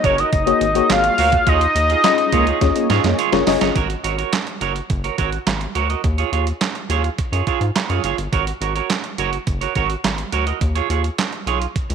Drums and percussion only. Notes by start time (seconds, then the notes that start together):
0.04 kick, closed hi-hat
0.18 closed hi-hat
0.33 kick, closed hi-hat
0.47 closed hi-hat
0.61 closed hi-hat
0.75 closed hi-hat
0.90 snare, clap, closed hi-hat
1.04 closed hi-hat
1.18 open hi-hat
1.32 kick, closed hi-hat
1.47 kick, closed hi-hat
1.61 closed hi-hat
1.76 closed hi-hat
1.90 closed hi-hat
2.04 snare, clap, closed hi-hat
2.18 closed hi-hat
2.32 kick, closed hi-hat
2.47 closed hi-hat
2.61 kick, snare, closed hi-hat
2.76 closed hi-hat
2.90 snare, closed hi-hat
3.04 snare, closed hi-hat
3.19 closed hi-hat
3.33 snare, closed hi-hat
3.47 snare, open hi-hat
3.61 snare, closed hi-hat
3.76 kick, closed hi-hat
3.90 closed hi-hat
4.04 closed hi-hat
4.19 closed hi-hat
4.33 snare, clap, closed hi-hat
4.47 closed hi-hat
4.61 closed hi-hat
4.76 closed hi-hat
4.90 kick, closed hi-hat
5.04 closed hi-hat
5.18 kick, closed hi-hat
5.32 closed hi-hat
5.47 snare, clap, closed hi-hat
5.61 closed hi-hat
5.75 closed hi-hat
5.90 closed hi-hat
6.04 kick, closed hi-hat
6.18 closed hi-hat
6.33 closed hi-hat
6.47 closed hi-hat
6.61 snare, clap, closed hi-hat
6.75 closed hi-hat
6.90 closed hi-hat
7.04 closed hi-hat
7.18 kick, closed hi-hat
7.33 closed hi-hat
7.47 kick, closed hi-hat
7.61 closed hi-hat
7.76 snare, clap, closed hi-hat
7.90 closed hi-hat
8.04 closed hi-hat
8.18 closed hi-hat
8.33 kick, closed hi-hat
8.47 closed hi-hat
8.62 closed hi-hat
8.76 closed hi-hat
8.90 snare, clap, closed hi-hat
9.04 closed hi-hat
9.18 closed hi-hat
9.33 closed hi-hat
9.47 kick, closed hi-hat
9.62 closed hi-hat
9.75 kick, closed hi-hat
9.90 closed hi-hat
10.04 snare, clap, closed hi-hat
10.18 closed hi-hat
10.32 closed hi-hat
10.47 closed hi-hat
10.61 kick, closed hi-hat
10.76 closed hi-hat
10.90 closed hi-hat
11.04 closed hi-hat
11.18 snare, clap, closed hi-hat
11.33 closed hi-hat
11.47 closed hi-hat
11.62 closed hi-hat
11.76 kick, closed hi-hat
11.90 closed hi-hat